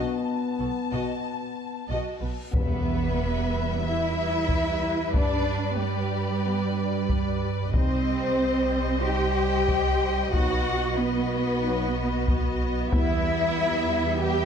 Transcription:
0.00 1.85 B3 medium
0.00 0.25 F#4 soft
0.00 0.25 D#5 soft
0.00 2.35 A5 soft
0.00 reverse cymbal soft
0.59 0.68 B1 soft
0.59 0.67 B2 soft
0.59 0.68 F#4 soft
0.59 0.67 A4 soft
0.91 1.00 B1 soft
0.91 1.01 B2 soft
0.91 1.22 F#4 soft
0.91 1.22 D#5 soft
1.89 1.97 B1 soft
1.89 1.97 B2 soft
1.89 2.20 F#4 soft
1.89 2.20 D#5 soft
2.21 2.30 B1 soft
2.21 2.30 B2 soft
2.21 2.29 F#4 soft
2.21 2.29 B4 soft
2.52 3.48 E2 medium
2.52 5.10 E2 soft
2.52 2.76 G3 soft
2.52 7.69 G3 medium
2.52 2.75 B3 soft
2.52 3.80 B3 medium
2.52 7.69 B4 soft
2.52 5.10 E5 soft
2.52 taiko medium
2.52 sub drop medium
2.56 3.81 B4 medium
3.83 4.06 G3 soft
3.83 4.06 B3 soft
3.83 5.14 E4 medium
3.83 5.15 E5 medium
4.49 taiko medium
5.14 7.70 G2 soft
5.14 5.38 G3 soft
5.14 5.38 B3 soft
5.14 5.78 D4 medium
5.14 5.78 D5 medium
5.14 7.71 D5 soft
5.14 taiko medium
5.78 7.42 G3 medium
5.78 7.38 G4 medium
6.45 6.68 G3 soft
6.45 6.68 B3 medium
7.09 taiko medium
7.73 10.34 C2 soft
7.73 7.96 G3 soft
7.73 10.30 G3 medium
7.73 9.00 C4 medium
7.73 7.97 D#4 medium
7.73 9.00 C5 medium
7.73 10.30 C5 medium
7.73 12.90 D#5 soft
7.73 taiko medium
9.03 9.26 G3 medium
9.03 9.26 D#4 medium
9.03 10.33 G4 medium
9.03 10.31 G5 medium
9.68 taiko medium
10.32 12.88 B1 medium
10.32 10.56 F#3 medium
10.32 14.45 B3 medium
10.32 10.55 D#4 medium
10.32 10.97 F#4 medium
10.32 12.93 F#4 medium
10.32 10.97 F#5 medium
10.32 taiko medium
10.98 12.61 B3 medium
10.98 12.60 B4 medium
11.62 11.85 F#3 medium
11.62 11.85 D#4 medium
12.28 taiko medium
12.91 14.45 E2 medium
12.91 13.14 G3 medium
12.91 14.45 G3 medium
12.91 13.14 B3 medium
12.91 14.19 E4 medium
12.91 14.45 E5 medium
12.91 14.19 E5 medium
12.91 taiko medium
14.22 14.45 G3 medium
14.22 14.45 B3 medium
14.22 14.45 G4 medium
14.22 14.45 G5 medium

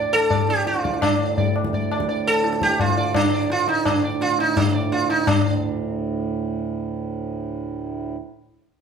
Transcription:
0.00 1.02 D2 medium
0.00 1.02 A2 medium
0.00 0.11 D5 soft
0.13 0.49 A4 loud
0.30 0.47 D5 soft
0.30 tabla na medium
0.30 tabla ge medium
0.49 0.67 G4 loud
0.49 tabla te medium
0.67 1.00 F4 medium
0.67 tabla te medium
0.76 tabla te medium
0.84 1.01 D5 soft
0.84 tabla ke medium
0.94 tabla te medium
1.02 5.25 D2 medium
1.02 5.25 A2 medium
1.02 1.52 D4 medium
1.02 tabla na loud
1.02 tabla ge loud
1.38 1.54 D5 soft
1.38 tabla tin medium
1.38 tabla ge medium
1.56 tabla na medium
1.65 tabla ke medium
1.73 1.90 D5 soft
1.73 tabla tin medium
1.73 tabla ge medium
1.91 2.08 D5 soft
1.91 tabla na medium
2.00 tabla ke medium
2.09 2.25 D5 soft
2.09 tabla tin medium
2.27 2.62 A4 loud
2.44 tabla te medium
2.53 tabla te medium
2.62 2.80 G4 loud
2.62 tabla ke medium
2.70 tabla te medium
2.80 3.17 F4 loud
2.80 tabla na medium
2.80 tabla ge medium
2.97 3.14 D5 soft
2.97 tabla te medium
3.14 3.48 D4 loud
3.14 tabla na loud
3.14 tabla ge loud
3.33 3.50 D5 soft
3.50 3.68 F4 loud
3.50 tabla te medium
3.68 3.86 D#4 medium
3.68 tabla te medium
3.85 4.02 D4 medium
3.85 tabla na loud
3.85 tabla ge medium
4.04 4.20 D5 soft
4.21 4.40 F4 loud
4.21 tabla te medium
4.39 4.57 D#4 medium
4.39 tabla te medium
4.57 4.73 D4 medium
4.57 tabla na medium
4.57 tabla ge medium
4.75 4.91 D5 soft
4.92 5.10 F4 medium
4.92 tabla te medium
5.10 5.28 D#4 medium
5.10 tabla te medium
5.26 8.17 D2 medium
5.26 8.17 A2 medium
5.26 6.29 D4 medium
5.26 tabla na loud
5.26 tabla ge loud

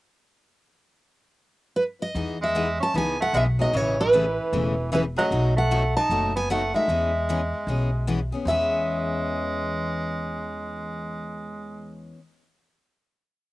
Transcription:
1.76 1.83 B4 medium
2.02 2.38 D#5 medium
2.15 2.78 E2 medium
2.15 2.37 E3 medium
2.15 2.37 B3 medium
2.15 2.37 D#4 medium
2.15 2.37 G#4 medium
2.42 2.78 G#3 medium
2.42 2.82 E5 medium
2.55 2.66 E3 medium
2.55 2.66 B3 medium
2.55 2.67 D#4 medium
2.55 2.67 G#4 medium
2.80 2.94 C#4 medium
2.80 2.96 A5 loud
2.94 3.28 C#2 medium
2.94 3.16 E3 medium
2.94 3.16 B3 medium
2.94 3.18 B3 medium
2.94 3.16 D#4 medium
2.94 3.16 G#4 medium
2.94 3.19 G#5 medium
3.20 3.33 A3 medium
3.20 3.36 F#5 medium
3.33 3.67 B1 medium
3.33 3.45 E3 medium
3.33 3.45 G#3 medium
3.33 3.45 B3 medium
3.33 3.46 D#4 medium
3.33 3.46 G#4 medium
3.33 3.43 E5 medium
3.59 3.76 F#3 medium
3.59 3.74 B3 soft
3.59 3.74 D#4 soft
3.59 3.73 G#4 medium
3.59 3.77 D#5 medium
3.73 4.36 A1 medium
3.73 3.95 C#3 medium
3.73 3.95 E3 medium
3.73 3.99 E3 medium
3.73 3.95 A3 medium
3.73 3.95 C#4 medium
3.73 3.95 G#4 medium
3.73 4.00 C#5 medium
4.00 4.89 E3 medium
4.00 4.93 B4 medium
4.13 4.24 C#3 medium
4.13 4.24 E3 medium
4.13 4.24 A3 medium
4.13 4.25 C#4 medium
4.13 4.25 G#4 medium
4.52 5.15 E1 medium
4.52 4.74 C#3 medium
4.52 4.74 E3 medium
4.52 4.74 A3 medium
4.52 4.74 C#4 medium
4.52 4.74 G#4 medium
4.92 5.03 C#3 medium
4.92 5.03 E3 medium
4.92 5.03 A3 medium
4.92 5.04 C#4 medium
4.92 5.04 G#4 medium
4.92 5.01 B4 medium
5.16 5.54 F#3 medium
5.16 5.31 A3 soft
5.16 5.31 C#4 soft
5.16 5.31 G#4 medium
5.16 5.54 D#5 medium
5.31 5.94 B1 medium
5.31 5.52 B2 medium
5.31 5.53 F#3 medium
5.31 5.53 A3 medium
5.31 5.53 D#4 medium
5.31 5.53 F#4 medium
5.57 5.93 A3 medium
5.57 5.94 F#5 medium
5.71 5.82 B2 medium
5.71 5.82 F#3 medium
5.71 5.82 A3 medium
5.71 5.82 D#4 medium
5.71 5.82 F#4 medium
5.96 6.32 D#4 medium
5.96 6.36 A5 loud
6.09 6.73 F#1 medium
6.09 6.31 B2 medium
6.09 6.32 F#3 medium
6.09 6.32 A3 medium
6.09 6.32 D#4 medium
6.09 6.32 F#4 medium
6.36 6.49 B3 medium
6.36 6.49 G#5 medium
6.50 6.61 B2 medium
6.50 6.61 F#3 medium
6.50 6.73 A3 medium
6.50 6.61 A3 medium
6.50 6.61 D#4 medium
6.50 6.61 F#4 medium
6.50 6.73 F#5 medium
6.74 8.28 G#3 medium
6.74 6.89 A3 soft
6.74 6.89 D#4 soft
6.74 6.88 F#4 medium
6.74 8.28 E5 medium
6.88 7.51 E2 medium
6.88 7.10 E3 medium
6.88 7.10 B3 medium
6.88 7.10 C#4 medium
6.88 7.10 G#4 medium
7.29 7.40 E3 medium
7.29 7.40 B3 medium
7.29 7.40 C#4 loud
7.29 7.40 G#4 medium
7.67 8.30 B1 medium
7.67 7.89 E3 medium
7.67 7.89 B3 medium
7.67 7.89 C#4 medium
7.67 7.89 G#4 medium
8.07 8.18 E3 medium
8.07 8.18 B3 medium
8.07 8.19 C#4 medium
8.07 8.19 G#4 medium
8.32 8.47 B3 soft
8.32 8.47 C#4 soft
8.32 8.46 G#4 soft
8.45 12.12 E2 medium
8.45 12.17 E3 medium
8.45 12.13 G#3 medium
8.45 12.19 B3 medium
8.45 12.20 C#4 medium
8.45 12.14 E5 medium
8.50 12.21 G#4 medium

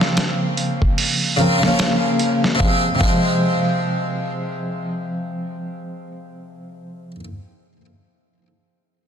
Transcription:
0.00 1.33 C#3 medium
0.00 1.35 F3 medium
0.00 1.36 A#3 medium
0.00 1.37 C4 medium
0.00 snare medium
0.17 snare medium
0.17 closed hi-hat medium
0.57 closed hi-hat medium
0.82 kick medium
0.98 open hi-hat medium
1.36 1.56 C#3 medium
1.36 1.57 F3 medium
1.36 1.57 A#3 medium
1.36 closed hi-hat medium
1.41 1.58 C4 medium
1.58 2.54 C#3 medium
1.58 2.55 F3 medium
1.63 2.57 A#3 medium
1.63 snare soft
1.67 2.58 C#4 medium
1.79 snare loud
1.79 closed hi-hat medium
2.19 closed hi-hat medium
2.44 snare soft
2.55 2.83 C3 medium
2.59 2.85 F3 medium
2.59 kick medium
2.63 2.87 G#3 medium
2.68 2.90 C4 medium
2.95 7.11 C3 medium
2.99 7.15 F3 medium
2.99 kick loud
3.03 7.20 G#3 medium
3.08 7.24 C4 medium

